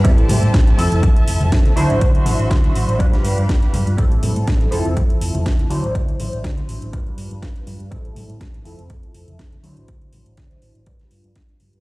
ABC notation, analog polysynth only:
X:1
M:4/4
L:1/8
Q:"Swing 16ths" 1/4=122
K:Ddor
V:1 name="Analog polysynth"
[G,CEA]3 [F,CEA]4 [^F,DEc]- | [^F,DEc]4 [G,D=FB]4 | [G,CEA]3 [F,CEA]4 [^F,DEc]- | [^F,DEc]4 [G,D=FB]4 |
[G,CEA]3 [F,CEA]4 [^F,DEc]- | [^F,DEc]4 [G,D=FB]4 |]